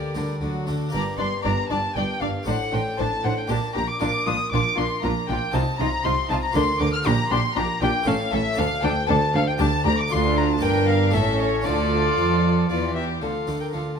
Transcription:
Already playing: D3 A#3 G4 D5
0.15 D2 D3 G3 D4 G4 A#4
0.41 D2 D3 F#3 F#4 D5
0.66 D2 D3 A3 D4 F#4 A4
0.89 A#3 D4 G4
0.93 G1 G2 D4 D5 A#5
1.18 G1 G2 D4 D5 C6
1.44 G1 G2 D4 D5 A#5
1.69 G1 G2 D4 D5 A5
1.96 G1 G2 D4 D5 G5
2.21 G1 G2 D4 D5 F5
2.43 A3 D4 C5 F#5
2.47 A1 A2 C5 F#5
2.73 A1 A2 D4 C5 G5
2.98 A1 A2 D4 C5 A5
3.24 A1 A2 D4 C5 F#5
3.37 G5
3.47 A#1 A#2 D4 G4 A#4 A5
3.74 A#1 A#2 D4 G4 A#5
3.88 D6
3.99 A#1 A#2 D4 F4 A#4 D6
4.25 A#1 A#2 D4 F4 D#6
4.51 A#1 A#2 D4 F4 D6
4.77 A#1 A#2 D4 F4 C6
5.02 A#1 A#2 D4 F4 A#5
5.28 A#1 A#2 D4 F4 G5
5.52 C2 C3 D#4 F4 D#5 A5
5.78 C2 C3 D#4 F4 A#5
6.03 C2 C3 D#4 F4 C6
6.29 C2 C3 D#4 F4 A5
6.42 A#5
6.51 D3 A#3 D4 F4 A#4 D5 C6
6.56 D2 D3
6.79 D2 D3 D4 A#4 D6
6.93 F6
7.03 A#1 A#2 D4 G4 D5 A#5
7.30 A#1 A#2 D4 G4 C6
7.55 A#1 A#2 D4 G4 A#5
7.81 A#1 A#2 D4 G4 G5
8.02 A3 E4 C#5
8.06 A1 A2 C#4 A4 F5
8.32 A1 A2 C#4 A4 E5
8.52 A3 D4 D5
8.57 D2 D4 A4 F5
8.83 D2 D4 A4 G5
9.08 D2 D4 A4 A5
9.34 D2 D4 A4 F5
9.47 G5
9.58 D2 D4 G4 D5 A5
9.85 D2 D4 G4 A#5
9.98 D6
10.07 D2 D4 F4 D5 C6
10.11 D2 D4 C6
10.37 A#5
10.50 A5
10.58 A#3 D4 D5
10.62 G1 G2 D4 A#4 G5
10.87 F5
11.10 A1 A2 A3 C#4 A4 E5
11.15 A2
11.39 C#5
11.61 D3 A3 F4 A4 D5
11.66 D2 D3 A4
12.17 F2 F3
12.69 E2 E3 F4 D5
12.95 G4 E5
13.21 D2 D3 F4 A4 F5
13.46 D2 D3 A3 D4 F4 A4
13.60 A#4 G5
13.71 D2 D3 F4 A4 F5

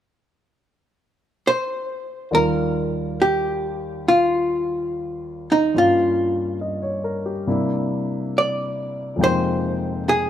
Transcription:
1.47 C5
2.31 D#2 D#3 G3 F4 A#4 D5
3.22 G4
4.08 F4
5.52 D#4
5.74 G2 G3 A#3 C#4 F4
6.61 D#5
6.82 C#5
7.04 A#4
7.26 G4
7.47 C3 G3 A#3 D4 E4
8.38 D5
9.16 F2 C3 G#3 A#3
9.21 D#4 C5 G5
10.09 G#4

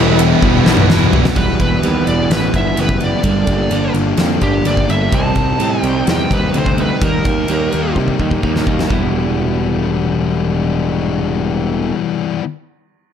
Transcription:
Already playing: E1 E2 B2 E3 G3 B3 E4 G4 B4 D#5 E5 B5
0.18 G3 B3 E4, ride
0.42 E1, kick
0.65 B1 E2 B2 E3 G3 B3 E4, snare
0.77 mid tom
0.88 E1 E2 B2 E3 G3 B3 E4, snare
1.13 E1 G3 B3 E4, floor tom
1.25 snare
1.35 E1 E3 G3 B3 E4 B4, kick, crash
1.59 E1 G3 B3 E4 B4, kick, ride
1.81 D#2 E3 G3 B3 E4, ride
2.06 E1 G3 B3 E4 D5, ride
2.30 A1 E3 G3 B3 E4 B4, snare, ride
2.53 G1 G3 B3 E4 E5, kick, ride
2.76 F#1 E3 G3 B3 E4, ride
2.81 B4
2.89 kick
3.00 G3 B3 E4 D5, ride
3.23 G1 G2 D3 G3 A#3 D4, kick, ride
3.47 G1 G3 A#3 D4, kick, ride
3.70 G1 G2 D3 G3, ride
3.74 A#3 D4
3.94 G1 G3 A#3 D4, ride
4.17 F2 G2 D3 G3 A#3 D4, snare, ride
4.41 G1 G3 A#3 D4 G4, kick, ride
4.65 G1 D3 G3 A#3 D4 D5, ride
4.77 kick
4.89 G1 G3 A#3 D4 E5, ride
5.11 C2 C3 G3 C4 D#4 A5, kick, ride
5.35 C2 G3 C4 D#4, kick, ride
5.59 A2 C3 G3 C4 D#4, ride
5.81 C2 C4 D#4 G5, ride
5.86 G3
6.06 E2 C3 G3 C4 D#4, snare, ride
6.11 G5
6.29 D#2 G3 C4 D#4, kick, ride
6.34 B4
6.54 D2 C3 G3 C4 D#4, ride
6.58 C5
6.66 kick
6.78 C4 D#4 B4, ride
6.82 G3
7.01 D#2 D#3 G3 A#3 D#4, kick, ride
7.05 A#4
7.25 D#2 G3 A#3 D#4, kick, ride
7.48 D#2 D#3 G3 A#3, ride
7.53 D#4
7.72 D#2 G3 A#3 D#4, ride
7.96 C3 D#3 G3 A#3 D#4, kick
8.08 kick
8.18 D#2 G3 A#3 D#4, kick
8.31 kick
8.43 D#2 D#3 G3 A#3 D#4, kick
8.56 snare
8.67 D#2 G3 A#3 D#4, kick
8.79 snare
8.90 E1 E3 G3 B3 E4, kick

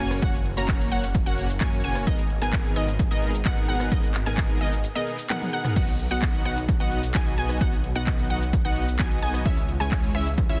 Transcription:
0.00 F#1 A#3 C#4 F#4 C#5 G#5
0.11 cross-stick, closed hi-hat, shaker
0.22 F#1 A#3 C#4 F#4 C#5 F#5, kick, closed hi-hat, shaker
0.34 closed hi-hat, shaker
0.45 open hi-hat
0.57 F#1 A#3 C#4 F#4 C#5 A#5, closed hi-hat, shaker
0.68 kick, clap, closed hi-hat, shaker
0.80 closed hi-hat, shaker
0.92 F#1 A#3 C#4 F#4 C#5 F#5, open hi-hat
1.03 closed hi-hat, shaker
1.15 kick, closed hi-hat, shaker
1.26 F#1 A#3 C#4 F#4 C#5 F#5, closed hi-hat, shaker
1.38 open hi-hat
1.49 closed hi-hat, shaker
1.61 A#3 C#4 F#4 C#5 G#5, kick, clap, closed hi-hat, shaker
1.72 closed hi-hat, shaker
1.84 F#1 A#3 C#4 F#4 C#5 G#5, open hi-hat
1.95 cross-stick, closed hi-hat, shaker
2.07 B3 D#4 G#4 A#4 D#5, kick, closed hi-hat, shaker
2.19 closed hi-hat, shaker
2.30 open hi-hat
2.42 G#1 B3 D#4 G#4 A#4 G#5, closed hi-hat, shaker
2.53 kick, clap, closed hi-hat, shaker
2.65 closed hi-hat, shaker
2.76 G#1 B3 D#4 G#4 A#4 D#5, cross-stick, open hi-hat
2.88 closed hi-hat, shaker
2.99 kick, closed hi-hat, shaker
3.11 G#1 B3 D#4 G#4 A#4 D#5, closed hi-hat, shaker
3.22 open hi-hat
3.34 closed hi-hat, shaker
3.45 B3 D#4 G#4 A#4 F#5, kick, clap, closed hi-hat, shaker
3.57 closed hi-hat, shaker
3.68 G#1 B3 D#4 G#4 A#4 F#5, open hi-hat
3.80 cross-stick, closed hi-hat, shaker
3.92 B3 D#4 G#4 A#4 D#5, kick, closed hi-hat, shaker
4.03 closed hi-hat, shaker
4.14 clap, open hi-hat
4.26 G#1 B3 D#4 G#4 A#4 G#5, closed hi-hat, shaker
4.37 kick, clap, closed hi-hat, shaker
4.49 closed hi-hat, shaker
4.61 G#1 B3 D#4 G#4 A#4 D#5, open hi-hat
4.72 closed hi-hat, shaker
4.84 closed hi-hat, shaker
4.95 B3 D#4 G#4 A#4 D#5, closed hi-hat, shaker
5.07 open hi-hat
5.18 closed hi-hat, shaker
5.30 B3 D#4 G#4 A#4 F#5, clap, closed hi-hat, high tom, shaker
5.42 closed hi-hat, high tom, shaker
5.53 B3 D#4 G#4 A#4 F#5, open hi-hat
5.65 cross-stick, closed hi-hat, mid tom, shaker
5.76 B1 B3 D#4 F#4 D#5 F#5, kick, closed hi-hat, crash, shaker
5.88 closed hi-hat, shaker
5.99 open hi-hat
6.11 B1 B3 D#4 F#4 D#5 F#5, closed hi-hat, shaker
6.22 kick, clap, closed hi-hat, shaker
6.34 closed hi-hat, shaker
6.45 B1 B3 D#4 F#4 D#5 F#5, cross-stick, open hi-hat
6.57 closed hi-hat, shaker
6.68 kick, closed hi-hat, shaker
6.80 B1 B3 D#4 F#4 D#5 F#5, closed hi-hat, shaker
6.91 open hi-hat
7.03 closed hi-hat, shaker
7.14 B1 B3 D#4 F#4 D#5 G#5, kick, clap, closed hi-hat, shaker
7.26 closed hi-hat, shaker
7.38 B1 B3 D#4 F#4 D#5 G#5, open hi-hat
7.49 cross-stick, closed hi-hat, shaker
7.61 B1 B3 D#4 F#4 D#5 F#5, kick, closed hi-hat, shaker
7.72 closed hi-hat, shaker
7.84 open hi-hat
7.95 B1 B3 D#4 F#4 D#5 F#5, closed hi-hat, shaker
8.07 kick, clap, closed hi-hat, shaker
8.18 closed hi-hat, shaker
8.30 B1 B3 D#4 F#4 D#5 F#5, open hi-hat
8.42 closed hi-hat, shaker
8.53 kick, closed hi-hat, shaker
8.65 B1 B3 D#4 F#4 D#5 F#5, closed hi-hat, shaker
8.76 open hi-hat
8.88 closed hi-hat, shaker
8.99 B3 D#4 F#4 D#5 G#5, kick, clap, closed hi-hat, shaker
9.11 closed hi-hat, shaker
9.22 B1 B3 D#4 F#4 D#5 G#5, open hi-hat
9.34 cross-stick, closed hi-hat, shaker
9.45 C#2 G#3 C#4 E4 C#5 E5, kick, closed hi-hat, shaker
9.57 closed hi-hat, shaker
9.69 open hi-hat
9.80 C#2 G#3 C#4 E4 C#5 G#5, closed hi-hat, shaker
9.91 kick, clap, closed hi-hat, shaker
10.03 closed hi-hat, shaker
10.15 C#2 G#3 C#4 E4 C#5 E5, cross-stick, open hi-hat
10.26 closed hi-hat, shaker
10.38 kick, closed hi-hat, shaker
10.49 C#2 G#3 C#4 E4 C#5 E5, closed hi-hat, shaker

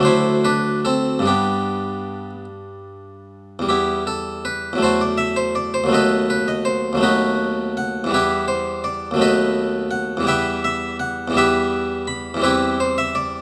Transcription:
Already playing: D2
0.00 F#3 A3 D4
0.05 E4 C5
0.44 D4 B4
0.85 C4 A4
1.19 G2 G3
1.25 B3 D4 G4
3.59 E2 G3
3.69 B3 E4 G4
4.07 A4
4.45 B4
4.73 E2 F#3
4.78 A3
4.82 F#4 A4 C5
5.01 D5
5.18 E5
5.36 C5
5.55 D5
5.74 C5
5.84 D#2 F#3
5.89 A3 B3
5.93 A4 B4 D#5
6.30 B4
6.48 D#5
6.65 C5
6.93 D#2 F#3
6.97 A3 B3
7.03 D#4 F#4 B4
7.77 F#5
8.04 E2 E3
8.09 G3 B3
8.14 E4 G4 B4
8.48 C5
8.84 D5
9.11 D#2 F#3
9.16 A3 B3
9.21 A4 B4 D#5
9.91 F#5
10.17 E2 E3
10.23 G3 B3
10.27 B4 E5 G5
10.64 E5
11.00 F#5
11.28 E2 E3
11.32 G3 B3
11.37 G4 B4 E5
12.07 B5
12.34 E2 E3
12.40 G3 C4 B4
12.44 E4 G4
12.80 C5
12.98 E5
13.15 D5

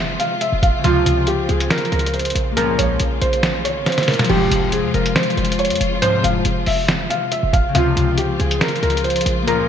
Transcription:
Already playing: F1 C3 F3 G#3 F4 E5
0.19 F5, closed hi-hat
0.41 E5, closed hi-hat
0.52 F1
0.63 F5, kick, closed hi-hat
0.74 G#1
0.78 C#3
0.84 C#2 C3 F3 C4 F4, closed hi-hat
0.89 F4
1.06 C#2, closed hi-hat
1.27 G4, closed hi-hat
1.49 C#2 G#4, closed hi-hat
1.60 closed hi-hat
1.70 A#4, snare, closed hi-hat
1.78 closed hi-hat
1.85 closed hi-hat
1.92 C#2 A#4, closed hi-hat
1.99 closed hi-hat
2.06 closed hi-hat
2.14 C5, closed hi-hat
2.19 closed hi-hat
2.25 closed hi-hat
2.30 closed hi-hat
2.35 A#1, closed hi-hat
2.52 A#3
2.57 C#2 A#2 C#3 F3 A#3 F4 G#4 A#4, closed hi-hat
2.62 C#4
2.78 A#1 C#5, closed hi-hat
3.00 A#1, closed hi-hat
3.21 A#1 C5, closed hi-hat
3.33 closed hi-hat
3.43 snare, closed hi-hat
3.65 C2 C#5, closed hi-hat
3.76 A#1
3.86 C5, snare, closed hi-hat
3.92 closed hi-hat
3.98 snare, closed hi-hat
4.03 closed hi-hat
4.08 A#4, snare, closed hi-hat, open hi-hat
4.14 closed hi-hat
4.19 snare, closed hi-hat
4.24 F3, closed hi-hat
4.29 F1 C2 G#2 C3 F3 G4, crash
4.35 G#3
4.51 F1, closed hi-hat
4.72 G#4, closed hi-hat
4.84 F2
4.94 F1 A#4, closed hi-hat
5.06 closed hi-hat
5.16 C5, snare, closed hi-hat
5.23 closed hi-hat
5.30 closed hi-hat
5.37 F1 C5, closed hi-hat
5.45 closed hi-hat
5.52 closed hi-hat
5.59 C#5, closed hi-hat
5.65 closed hi-hat
5.70 F2, closed hi-hat
5.75 closed hi-hat
5.81 F1, closed hi-hat
6.02 C2 G#2 F3 C5, closed hi-hat
6.24 F1 F5, closed hi-hat
6.45 F1, closed hi-hat
6.66 F1 E5, open hi-hat
6.88 snare, closed hi-hat
7.10 F5, closed hi-hat
7.32 E5, closed hi-hat
7.43 F1
7.53 F5, kick, closed hi-hat
7.65 G#1
7.69 C#3
7.74 C#2 C3 F3 G#3 C4 F4, closed hi-hat
7.80 F4
7.96 C#2, closed hi-hat
8.18 G4, closed hi-hat
8.40 C#2 G#4, closed hi-hat
8.51 closed hi-hat
8.61 A#4, snare, closed hi-hat
8.68 closed hi-hat
8.76 closed hi-hat
8.83 C#2 A#4, closed hi-hat
8.90 closed hi-hat
8.97 closed hi-hat
9.04 C5, closed hi-hat
9.10 closed hi-hat
9.16 closed hi-hat
9.21 closed hi-hat
9.26 A#1, closed hi-hat
9.42 A#3
9.47 C#2 A#2 F3 A#3 G#4 A#4, closed hi-hat
9.53 C#4

